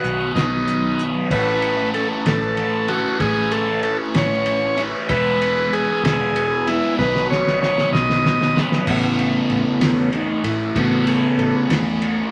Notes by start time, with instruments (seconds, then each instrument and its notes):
Already playing: overdriven electric guitar B2 D#3 F#3 B3 D#4, transistor combo organ F#4 C#5 B5 D#6
0.04 fingered electric bass B1, closed hi-hat
0.35 fingered electric bass B1, overdriven electric guitar B2 D#3 F#3 B3 D#4, transistor combo organ D#4, kick, snare, closed hi-hat
0.68 closed hi-hat
0.99 closed hi-hat
1.30 fingered electric bass A1, overdriven electric guitar A2 E3 A3 C#4 E4, transistor combo organ B4 A5 C#6, kick, crash
1.62 ride
1.94 transistor combo organ A4, ride
2.25 fingered electric bass A1, transistor combo organ A4, snare, ride
2.57 ride
2.88 overdriven electric guitar A2 E3 A3 C#4 E4, transistor combo organ F#4, ride
3.19 fingered electric bass A1, overdriven electric guitar A2 E3 A3 C#4 E4, transistor combo organ G#4 G#5, kick, ride
3.51 transistor combo organ A4, ride
3.83 transistor combo organ A4, ride
4.14 fingered electric bass A1, transistor combo organ C#5, snare, ride
4.46 ride
4.77 overdriven electric guitar A2 E3 A3 C#4 E4, ride
5.09 fingered electric bass E1, overdriven electric guitar E3 G#3 B3 E4, transistor combo organ B4 E6, kick, ride
5.42 ride
5.73 transistor combo organ G#4, ride
6.03 fingered electric bass E1, transistor combo organ G#4, snare, ride
6.36 ride
6.67 overdriven electric guitar E3 G#3 B3 E4, transistor combo organ E4, ride
6.98 fingered electric bass B1, overdriven electric guitar B2 D#3 F#3 B3 D#4, transistor combo organ B4 C#5 B5 D#6, kick, snare
7.16 snare
7.30 transistor combo organ C#5, snare
7.47 snare
7.61 transistor combo organ C#5, snare
7.78 snare
7.92 fingered electric bass B1, transistor combo organ D#5, snare
8.10 snare
8.26 snare
8.42 snare
8.56 overdriven electric guitar B2 D#3 F#3 B3 D#4, snare
8.72 snare
8.86 fingered electric bass A1, overdriven electric guitar A2 E3 A3 C#4, transistor combo organ C#3 A3 B3, kick, crash
8.90 overdriven electric guitar E4
9.19 ride
9.50 fingered electric bass A1, ride
9.80 fingered electric bass E2, transistor combo organ C#3 A3 B3 C#4, snare, ride
10.13 transistor combo organ D#4, ride
10.44 fingered electric bass A2, transistor combo organ E4, ride
10.75 fingered electric bass A1, overdriven electric guitar A2 E3 A3 C#4 E4, transistor combo organ C#3 A3 B3 F#4, kick, ride
11.07 transistor combo organ G#4, ride
11.38 fingered electric bass A1, transistor combo organ A4, ride
11.55 transistor combo organ G#4
11.69 fingered electric bass E2, snare, ride
12.02 ride